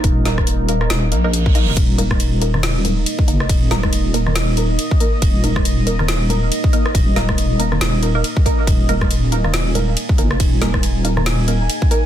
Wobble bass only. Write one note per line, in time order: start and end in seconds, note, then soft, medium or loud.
0.04 0.89 D#1 loud
0.90 1.14 D#1 medium
1.12 1.66 A#1 loud
1.68 1.76 F#1 medium
1.77 3.05 D#1 loud
3.28 3.48 F#1 medium
3.49 4.78 D#1 loud
5.22 6.50 D#1 loud
6.95 7.80 D#1 loud
7.81 8.23 D#1 medium
8.67 9.96 D#1 loud
10.19 10.39 F#1 medium
10.40 11.68 D#1 loud